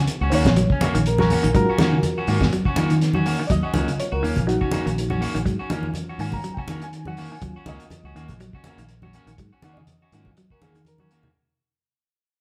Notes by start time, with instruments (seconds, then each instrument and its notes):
0.08 muted fingered electric bass stroke, closed hi-hat
0.21 fingered electric bass C#2, clean electric guitar C#4 F#4
0.30 fingered electric bass D#2, clean electric guitar D#3 A#3 C#4 F#4, reed electric piano C5, open hi-hat
0.35 reed electric piano C#5
0.45 fingered electric bass A#1, kick, snare, closed hi-hat, high conga
0.56 clean electric guitar F#3, closed hi-hat
0.70 clean electric guitar C#4, kick
0.81 clean electric guitar A#3 C#4 F#4, closed hi-hat, high conga
0.95 fingered electric bass A#1, clean electric guitar D#3, closed hi-hat
1.06 reed electric piano A#4, closed hi-hat
1.18 clean electric guitar F#3 C#4 F#4, reed electric piano A#4, snare, high conga
1.30 clean electric guitar A#3 C#4 F#4, open hi-hat, high conga
1.43 fingered electric bass A#1, clean electric guitar D#3, closed hi-hat
1.54 fingered electric bass G#2, reed electric piano F#3 C#4 F4 F#4 A#4, clean electric guitar F#3, kick, closed hi-hat
1.70 clean electric guitar C#4 F#4
1.78 fingered electric bass D#3, clean electric guitar D#3 A#3 C#4 F#4, snare, closed hi-hat, high conga
1.92 clean electric guitar C#3
2.03 closed hi-hat, high conga
2.18 clean electric guitar C#4 F#4
2.27 fingered electric bass G#2, clean electric guitar D#3 A#3 C#4 F#4, open hi-hat
2.40 kick, snare, high conga
2.53 clean electric guitar F#3, closed hi-hat
2.65 clean electric guitar C#4 F#4, kick
2.76 fingered electric bass D#3, reed electric piano F#3 C#4 F4, clean electric guitar A#3 C#4 F#4, closed hi-hat, high conga
2.90 clean electric guitar D#3, closed hi-hat
3.01 snare, closed hi-hat
3.13 clean electric guitar F#3 C#4 F#4, high conga
3.26 clean electric guitar A#3 C#4 F#4, open hi-hat
3.40 clean electric guitar D#3
3.47 fingered electric bass D#2, clean electric guitar F#3, reed electric piano D5, kick, closed hi-hat
3.52 reed electric piano D#5
3.63 clean electric guitar C#4 F#4
3.74 fingered electric bass C#2, clean electric guitar D#3 A#3 C#4 F#4, reed electric piano F#3 C#4 F4, closed hi-hat, high conga
3.88 clean electric guitar C#3, closed hi-hat
3.99 reed electric piano C#5, muted fingered electric bass stroke, closed hi-hat
4.12 fingered electric bass C#2, clean electric guitar F#4, reed electric piano A#4
4.23 fingered electric bass D#2, clean electric guitar D#3 A#3 C#4, open hi-hat
4.36 fingered electric bass A#1, kick, closed hi-hat, high conga
4.47 clean electric guitar F#3, reed electric piano D#4 F#4, closed hi-hat
4.61 clean electric guitar C#4 F#4, kick
4.71 clean electric guitar A#3 C#4 F#4, closed hi-hat, high conga
4.86 fingered electric bass A#1, clean electric guitar D#3, closed hi-hat
4.98 closed hi-hat
5.10 clean electric guitar F#3 C#4 F#4, high conga
5.21 clean electric guitar A#3 C#4 F#4, open hi-hat
5.35 fingered electric bass A#1, clean electric guitar D#3, closed hi-hat
5.46 fingered electric bass G#2, clean electric guitar F#3, kick, closed hi-hat
5.59 clean electric guitar C#4 F#4
5.70 clean electric guitar D#3 A#3 C#4, fingered electric bass D#3, reed electric piano F#3 C#4 F4, closed hi-hat, high conga
5.83 high conga
5.94 closed hi-hat, high conga
6.09 clean electric guitar C#4 F#4
6.18 fingered electric bass G#2, clean electric guitar D#3 A#3 C#4 F#4, reed electric piano G#5, open hi-hat
6.32 reed electric piano A#5, kick, high conga
6.44 clean electric guitar F#3, closed hi-hat
6.54 clean electric guitar F#4, reed electric piano G5, kick
6.59 clean electric guitar C#4, reed electric piano G#5
6.68 fingered electric bass D#3, clean electric guitar A#3 C#4 F#4, closed hi-hat, high conga
6.82 clean electric guitar D#3, reed electric piano G#5, closed hi-hat
6.93 closed hi-hat
7.05 clean electric guitar F#3 C#4 F#4, reed electric piano F#5, high conga
7.17 clean electric guitar A#3 C#4 F#4, open hi-hat
7.32 clean electric guitar D#3, reed electric piano G#5
7.42 fingered electric bass D#2, reed electric piano F#3 C#4 F4, clean electric guitar F#3, kick, closed hi-hat
7.56 clean electric guitar C#4 F#4
7.66 fingered electric bass C#2, clean electric guitar D#3 A#3 C#4 F#4, reed electric piano D#5, closed hi-hat, high conga
7.80 closed hi-hat
7.90 muted fingered electric bass stroke, closed hi-hat, high conga
8.04 fingered electric bass C#2, clean electric guitar C#4 F#4
8.14 fingered electric bass D#2, clean electric guitar D#3 A#3 C#4 F#4, closed hi-hat
8.29 fingered electric bass A#1, kick, closed hi-hat, high conga
8.40 clean electric guitar F#3, closed hi-hat
8.53 clean electric guitar C#4 F#4, kick
8.64 clean electric guitar A#3 C#4 F#4, closed hi-hat, high conga
8.78 fingered electric bass A#1, clean electric guitar D#3, closed hi-hat
8.89 closed hi-hat
9.02 clean electric guitar F#3 C#4 F#4, high conga
9.13 clean electric guitar A#3 C#4 F#4, closed hi-hat
9.26 fingered electric bass A#1, clean electric guitar D#3, closed hi-hat
9.38 fingered electric bass G#2, clean electric guitar F#3, kick, closed hi-hat
9.53 clean electric guitar C#4 F#4
9.62 fingered electric bass D#3, clean electric guitar D#3 A#3 C#4 F#4, reed electric piano F#5, closed hi-hat, high conga
9.73 reed electric piano D5, high conga
9.77 clean electric guitar C#3, reed electric piano D#5
9.87 closed hi-hat, high conga
10.02 clean electric guitar C#4 F#4
10.12 fingered electric bass G#2, clean electric guitar D#3 A#3 C#4 F#4, reed electric piano F#3 C#4 F4, closed hi-hat
10.25 kick, high conga
10.37 clean electric guitar F#3, closed hi-hat
10.50 clean electric guitar C#4 F#4, reed electric piano A#4, kick
10.61 fingered electric bass D#3, clean electric guitar A#3 C#4 F#4, reed electric piano G#4, closed hi-hat, high conga
10.75 clean electric guitar D#3, closed hi-hat, high conga
10.85 reed electric piano A#4, closed hi-hat, high conga
10.98 clean electric guitar F#3 C#4 F#4, high conga
11.11 clean electric guitar A#3 C#4 F#4, closed hi-hat
11.23 clean electric guitar D#3, low conga